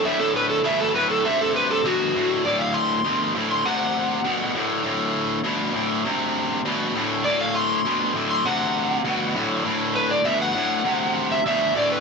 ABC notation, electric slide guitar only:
X:1
M:4/4
L:1/16
Q:1/4=100
K:Dmix
V:1 name="Electric slide guitar"
e A B A e A B A e A B A F4 | d =f c'4 z c' ^f8 | z16 | d =f c'4 z c' ^f8 |
z2 B d e f6 e e2 d B |]